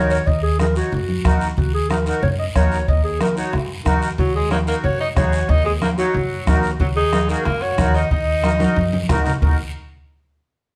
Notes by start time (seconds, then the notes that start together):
Already playing: D#2 D#4 F#4 A#4 C#5
0.10 C#5, short guiro
0.27 D#2 D#5, bombo low, long guiro
0.43 G#4
0.59 D#4 F#4 G#4 A#4, bombo rim, high conga, short guiro
0.76 D#4 F#4 C#5, short guiro
0.92 F#2, low conga, long guiro
1.09 high conga
1.25 D#2 D#4 F#4 A#4, bombo low, bombo rim, high conga, short guiro
1.41 short guiro
1.57 D#2 F#4, bombo low, low conga, long guiro
1.74 G#4
1.90 D#4 F#4 A#4, bombo rim, high conga, short guiro
2.06 D#4 F#4 A#4, short guiro
2.23 F#2 C#5, low conga, long guiro
2.39 D#5
2.55 D#2 D#4 F#4 A#4 C#5, bombo low, bombo rim, high conga, short guiro
2.72 short guiro
2.88 D#2 D#5, bombo low, long guiro
3.04 G#4
3.20 D#4 F#4 A#4, bombo rim, high conga, short guiro
3.36 D#4 F#4 C#5, short guiro
3.53 F#2, bombo rim, low conga, long guiro
3.85 D#2 D#4 F#4 A#4, bombo low, bombo rim, high conga, low conga, short guiro
4.02 short guiro
4.18 D#2 F#3 F#4, bombo low, low conga, long guiro
4.35 G#3 G#4
4.50 A#3 D#4 F#4 A#4 C#5, bombo rim, high conga, short guiro
4.66 A#3 D#4 F#4 A#4, short guiro
4.84 F#2 F#4 C#5, low conga, long guiro
5.00 D#4 D#5
5.16 D#2 D#4 F#4 G#4 C#5, bombo low, bombo rim, high conga, low conga, short guiro
5.33 short guiro
5.49 D#2 D#4 D#5, bombo low, low conga, long guiro
5.64 G#3 G#4
5.81 A#3 D#4 F#4 A#4, bombo rim, high conga, short guiro
5.98 F#3 D#4 F#4 C#5, short guiro
6.14 F#2, low conga, long guiro
6.47 D#2 D#4 F#4 A#4, bombo low, bombo rim, high conga, low conga, short guiro
6.63 short guiro
6.80 D#2 F#3 F#4, bombo low, low conga, long guiro
6.96 D#4 G#4
7.12 D#4 F#4 A#4, bombo rim, high conga, short guiro
7.29 A#3 D#4 F#4 G#4 A#4, short guiro
7.45 F#2 A#3 A#4, bombo rim, low conga, long guiro
7.62 F#4 C#5
7.78 D#2 D#4 F#4 A#4, bombo low, bombo rim, high conga, low conga, short guiro
7.94 D#4 D#5, short guiro
8.11 D#2 D#4 D#5, bombo low, long guiro
8.43 D#4 F#4 A#4, bombo rim, high conga, short guiro
8.60 D#4 F#4 A#4, high conga, short guiro
8.76 F#2, high conga, long guiro
8.93 high conga
9.09 D#2 D#4 F#4 A#4, bombo low, bombo rim, low conga, short guiro
9.26 low conga, short guiro
9.42 D#2 D#4 F#4 A#4, bombo low, low conga, long guiro